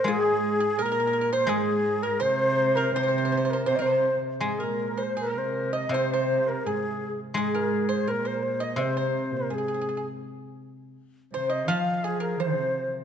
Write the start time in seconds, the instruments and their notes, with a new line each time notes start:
Already playing: xiao C5
0.04 cello G#2, guzheng G#3, clarinet G#4, pipa G#4
0.11 xiao G#4
0.60 pipa G#4
0.78 cello A#2, clarinet A#4, pipa A#4
0.82 xiao A#4, pipa A#4
0.92 pipa A#4
1.00 pipa A#4
1.07 pipa A#4
1.13 pipa A#4
1.21 pipa A#4
1.33 pipa C5, clarinet C5, xiao C5
1.47 cello G#2, guzheng G#3, pipa G#4, clarinet G#4, xiao G#4
2.02 clarinet A#4, xiao A#4, pipa A#4
2.20 cello C3, pipa C5, xiao C5, clarinet C5
2.76 xiao A#4, pipa A#4
2.94 cello C3, clarinet C5, xiao C5, pipa C5
3.03 pipa C5
3.08 pipa C5
3.18 pipa C5
3.25 pipa C5
3.32 pipa C5
3.37 pipa C5
3.45 pipa C5
3.50 xiao A#4, pipa C5
3.66 cello C3, pipa C5, clarinet C5, xiao C5
3.76 pipa C5, xiao D#5
3.81 cello C3, clarinet C5, xiao C5
4.41 cello G#2, guzheng G#3, pipa G#4, xiao G#4
4.45 clarinet G#4
4.59 cello A#2, clarinet A#4, pipa A#4
4.64 xiao A#4
4.97 pipa C5, clarinet C5
5.03 xiao C5
5.16 cello A#2, clarinet A#4, pipa A#4
5.20 xiao A#4
5.35 cello C3, xiao C5
5.72 clarinet D#5, pipa D#5
5.77 xiao D#5
5.89 guzheng C3, cello C3, clarinet C5
5.94 xiao C5, pipa C5
6.11 clarinet C5, xiao C5, pipa C5
6.47 clarinet A#4, xiao A#4
6.65 cello G#2, clarinet G#4, pipa G#4, xiao G#4
7.34 cello G#2, guzheng G#3, clarinet G#4, pipa G#4
7.39 xiao G#4
7.55 pipa A#4, xiao A#4
7.89 pipa C5, xiao C5
8.08 cello A#2, pipa A#4, clarinet A#4, xiao A#4
8.25 pipa C5, clarinet C5
8.29 xiao C5
8.34 xiao A#4
8.43 xiao C5
8.60 pipa D#5, clarinet D#5, xiao D#5
8.76 guzheng C3, cello C3, pipa C5
8.81 clarinet C5, xiao C5
8.97 pipa C5, clarinet C5, xiao C5
9.31 cello A#2
9.37 xiao A#4
9.50 cello G#2, pipa G#4, clarinet G#4, xiao G#4
9.58 pipa G#4
9.68 pipa G#4
9.74 pipa G#4
9.81 pipa G#4
9.89 pipa G#4
9.97 pipa G#4
11.33 cello C3, clarinet C5, pipa C5, xiao C5
11.50 pipa D#5, xiao D#5
11.66 cello F3, guzheng F3, clarinet F5, pipa F5, xiao F5
12.04 pipa G#4, clarinet G#4, xiao G#4
12.20 pipa A#4, xiao A#4
12.38 cello C3, pipa C5, clarinet C5, xiao C5